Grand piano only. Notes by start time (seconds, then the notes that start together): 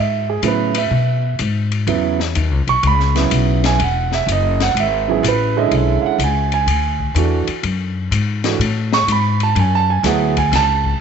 0.00 E5
0.30 G#4
0.43 C#3 F#3 B3 E4
0.48 B4
0.78 E5
1.87 C#3 F#3 B3 E4
2.69 C#6
2.87 B5
3.15 C#3 F#3 B3 E4
3.66 G#5
3.84 F#5
4.14 E5
4.32 D#5
4.62 F#5
4.80 E5
5.08 C#3 F#3 B3 E4 G#4
5.28 B4
5.56 D3 G#3 C#4 E4 D#5
5.75 E5
6.02 F5
6.06 F#5
6.24 G#5
6.54 G#5
7.16 E3 A3 D4 F#4
8.44 E3 A3 D4 F#4
8.94 C#6
9.12 B5
9.43 A5
9.59 G#5
9.75 A5
9.90 G#5
10.04 F#3 B3 E4 G#4 F#5
10.38 G#5
10.56 A5